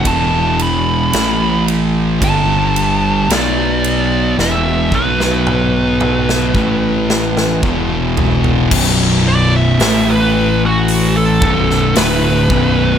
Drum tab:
CC |----------------|----------------|x---------------|
RD |x-x-x-x-x-x-x-x-|----------------|----------------|
HH |----------------|----------------|----o---o---o---|
SD |----o-------o---|o--o---o--oo----|----o------oo---|
T2 |----------------|----o-o---------|----------------|
FT |----------------|--------------oo|----------------|
BD |o-------o-------|--o-----o---o---|o---------o---o-|